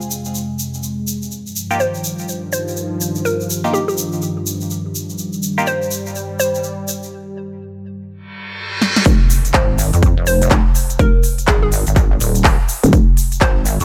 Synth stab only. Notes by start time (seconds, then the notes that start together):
1.71 A#3 D#4 F4 G4
3.64 A#3 D#4 F4 G4
5.58 A#3 D#4 F4 G4